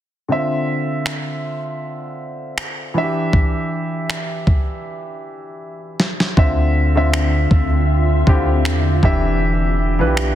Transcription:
0.28 D3 C4 F4 E5
1.06 finger snap
2.58 finger snap
2.94 E3 D4 F#4 E5
3.03 G4
3.33 kick
4.10 finger snap
4.47 kick
6.00 snare
6.20 snare
6.37 D2 D3 C4 F4 E5, kick
6.96 D3 C4 F4 E5
7.14 finger snap
7.51 D2, kick
8.27 D2 D3 C4 E4 G4, kick
8.35 F4
8.65 E2, finger snap
9.03 E1 E3 B3 D4 G4 E5, kick
9.99 B1 E3 D4 F4 B4
10.07 G4
10.17 finger snap

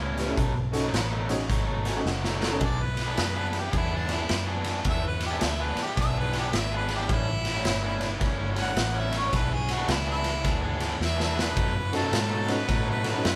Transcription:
Already playing: C#2
0.00 A2 G3 C#4 E4
0.17 A2 G3 C#4 E4 G4 B4, snare, closed hi-hat
0.27 C#4 E4 G4 A4
0.37 B1 B2 F#3 A3 D#4, kick, closed hi-hat
0.55 muted overdriven electric guitar stroke
0.72 C#4 D#4 F#4 A4, snare, closed hi-hat
0.83 B2 F#3 A3 D#4
0.93 A1, snare, closed hi-hat
1.10 B2 F#3 A3 D#4
1.29 C#4 D#4 F#4 G#4, snare, closed hi-hat
1.49 G#1 B2 F#3 A3 D#4, kick, snare, closed hi-hat
1.67 B2 F#3 A3 D#4
1.84 B2 F#3 A3 D#4 F#4 A4 G#5, snare, closed hi-hat
1.95 C#4 D#4 F#4 A4
2.06 F#1 F#5, snare
2.21 B2 F#3 A3 D#4, snare
2.40 B2 F#3 A3 D#4 F#4 A4, snare
2.51 C#4 D#4 F#4 A4
2.59 B1 E3 B3 D4 G#4, kick, ride
2.65 D5
2.78 muted overdriven electric guitar stroke
2.83 B4
2.97 snare, ride
3.06 E3 B3 D4 G#4
3.17 F#2, snare, ride
3.34 E3 B3 D4 G#4
3.53 snare, ride
3.58 G4
3.72 E2 E3 B3 D4 G#4, kick, ride
3.77 E4
3.90 E3 B3 D4 G#4
3.96 D4
4.08 E3 B3 D4 G#4, snare, ride
4.15 E4
4.29 F#2, snare, ride
4.46 E3 B3 D4 G#4
4.64 E3 B3 D4 G#4, snare, ride
4.85 E2 E3 B3 D4 G#4, kick, ride
4.89 E5
5.03 muted overdriven electric guitar stroke
5.08 B4
5.20 snare, ride
5.26 G4
5.31 E3 B3 D4 G#4
5.41 D2, snare, ride
5.46 E5
5.59 E3 B3 D4 G#4 B4
5.76 muted fingered electric bass stroke, snare, ride
5.82 G4
5.97 B1 E3 B3 D4 G#4, kick, snare, ride
6.01 E5
6.16 E3 B3 D4 G#4 B4
6.33 E3 B3 D4 G#4, snare, ride
6.39 G4
6.53 G#1, snare, ride
6.57 E5
6.72 E3 B3 D4 G#4
6.77 B4
6.89 E3 B3 D4 G#4, snare, ride
6.96 G4
7.09 A1 A2 G3 C#4 E4, kick, ride
7.13 E4
7.27 muted overdriven electric guitar stroke
7.45 snare, ride
7.54 A2 G3 C#4 E4
7.65 G1, snare, ride
7.82 A2 G3 C#4 E4
8.01 snare, ride
8.19 G1 A2 G3 C#4 E4, kick, snare, ride
8.38 A2 G3 C#4 E4
8.56 A2 G3 C#4 E4, snare, ride
8.62 F#5
8.76 A1, snare, ride
8.93 A2 G3 C#4 E4
9.00 E5
9.12 A2 G3 C#4 E4, snare, ride
9.18 C#5
9.31 B1 E3 B3 D4 G#4 B4, kick, snare, ride
9.50 G#4, muted overdriven electric guitar stroke
9.69 F#4, snare, ride
9.77 E3 B3 D4 G#4
9.88 C#2 E4, snare, ride
10.05 E3 B3 D4 G#4
10.11 E4
10.24 snare, ride
10.43 D2 E3 B3 D4 G#4, kick, snare, ride
10.61 E3 B3 D4 G#4
10.79 E3 B3 D4 G#4, snare, ride
11.00 E2, snare
11.05 E5
11.17 E3 B3 D4 G#4, snare
11.24 E5
11.34 E3 B3 D4 G#4
11.39 B4, snare
11.55 F#2 B2 F#3 A3 D#4, kick, ride
11.73 muted overdriven electric guitar stroke
11.92 C#4 D#4 F#4 A4, snare, ride
11.96 A4
12.01 B2 F#3 A3 D#4
12.12 G#2, snare, ride
12.29 B2 F#3 A3 D#4
12.47 C#4 D#4 F#4 A4, snare, ride
12.54 B4
12.68 A2 B2 F#3 A3 D#4, kick, snare, ride
12.86 B2 F#3 A3 D#4
12.90 B4
13.03 B2 F#3 A3 D#4 F#4 A4, snare, ride
13.09 B4
13.14 C#4 D#4 F#4 A4
13.25 F#2, snare, ride

